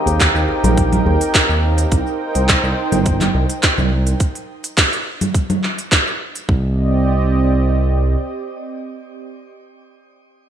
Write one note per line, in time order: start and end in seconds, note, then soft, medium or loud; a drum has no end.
0.00 2.78 A#3 medium
0.00 2.78 C4 loud
0.00 1.89 D#4 medium
0.00 2.67 D#4 loud
0.00 1.89 G4 medium
0.00 2.48 G4 medium
0.00 4.16 A#4 medium
0.00 1.89 G5 medium
0.06 0.27 D#2 medium
0.06 open hi-hat soft
0.06 djembe bass medium
0.06 shaker medium
0.20 kick loud
0.20 clap medium
0.20 open hi-hat medium
0.20 shaker medium
0.35 0.45 D#2 loud
0.35 shaker soft
0.48 djembe tone medium
0.63 1.00 A#1 loud
0.63 open hi-hat soft
0.63 low conga medium
0.63 djembe bass medium
0.63 shaker medium
0.78 kick loud
0.78 open hi-hat medium
0.78 shaker medium
0.93 open hi-hat soft
0.93 low conga medium
0.93 shaker soft
1.06 1.17 D#2 loud
1.06 djembe bass medium
1.21 open hi-hat soft
1.21 shaker medium
1.35 kick loud
1.35 clap loud
1.35 open hi-hat medium
1.35 shaker medium
1.49 1.86 D#2 medium
1.49 shaker soft
1.78 open hi-hat soft
1.78 shaker medium
1.91 2.03 C2 loud
1.91 4.18 D#4 medium
1.91 4.18 C5 medium
1.91 4.18 G5 medium
1.91 kick loud
1.91 open hi-hat medium
1.91 shaker medium
2.07 shaker soft
2.35 2.56 C2 medium
2.35 open hi-hat soft
2.35 shaker medium
2.49 kick loud
2.49 clap loud
2.49 open hi-hat medium
2.49 shaker medium
2.63 2.73 C2 loud
2.63 shaker soft
2.92 3.28 G1 medium
2.92 open hi-hat soft
2.92 low conga medium
2.92 shaker medium
3.06 kick loud
3.06 open hi-hat medium
3.06 shaker medium
3.21 clap soft
3.21 open hi-hat soft
3.21 low conga medium
3.21 shaker soft
3.34 3.45 C2 loud
3.50 open hi-hat soft
3.50 shaker medium
3.63 kick loud
3.63 clap loud
3.63 open hi-hat medium
3.63 shaker medium
3.78 4.14 C2 medium
3.78 low conga medium
3.78 shaker soft
4.07 open hi-hat soft
4.07 shaker medium
4.20 kick loud
4.20 open hi-hat medium
4.20 shaker medium
4.35 open hi-hat soft
4.35 shaker soft
4.64 open hi-hat soft
4.64 shaker medium
4.77 kick loud
4.77 clap loud
4.77 open hi-hat medium
4.77 shaker medium
4.93 open hi-hat soft
4.93 shaker soft
5.21 open hi-hat soft
5.21 low conga medium
5.21 shaker medium
5.34 kick loud
5.34 open hi-hat medium
5.34 shaker medium
5.50 open hi-hat soft
5.50 low conga medium
5.50 shaker soft
5.63 clap soft
5.79 open hi-hat soft
5.79 shaker medium
5.92 kick loud
5.92 clap loud
5.92 open hi-hat medium
5.92 shaker medium
6.07 shaker soft
6.36 open hi-hat soft
6.36 shaker medium
6.49 8.16 C2 loud
6.49 9.54 C4 medium
6.49 9.54 G4 medium
6.49 9.53 D5 medium
6.49 9.54 D#5 medium
6.49 kick loud